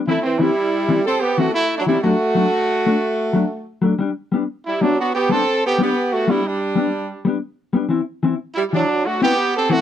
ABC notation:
X:1
M:12/8
L:1/16
Q:3/8=122
K:G
V:1 name="Horn section"
[A,E]2 [E,C]2 [G,E]8 [CA]2 [B,G]2 [A,F]2 [A,E]3 [F,D] [G,E]2 | [A,F]16- [A,F]4 z4 | z8 [G,E]2 [F,D]2 [B,F]2 [B,G]2 [CA]4 [B,G]2 [B,G]2- | [B,G]2 [A,F]2 [G,E]2 [G,D]8 z8 z2 |
z8 [G,E]2 [F,D]4 [A,F]2 [B,G]4 [CA]2 [A,F]2 |]
V:2 name="Clean electric guitar"
[E,CE]2 z2 [E,CE]2 z4 [E,CE]2 z4 [E,CE]2 z4 [E,CE]2 | [F,A,D]2 z2 [F,A,D]2 z4 [A,D]2 z4 [F,A,D]2 z4 [F,A,D]2 | [G,D]2 z2 [G,B,D]2 z4 [G,B,D]2 z4 [G,B,D]2 z4 [G,B,D]2 | z4 [G,B,D]2 z4 [G,B,D]2 z4 [G,B,D]2 z4 [G,B,D]2 |
[E,CE]2 z2 [E,CE]2 z4 [E,E]2 z4 [CE]2 z4 [E,CE]2 |]